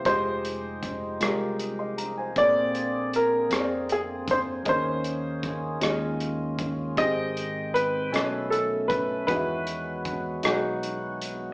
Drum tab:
HH |xxxxxx|xxxxxx|xxxxxx|xxxxxx|
SD |--rr--|---r--|--rr--|---r--|
BD |o-o---|o----o|o-o--o|o----o|

HH |xxxxxx|
SD |---r--|
BD |o-o---|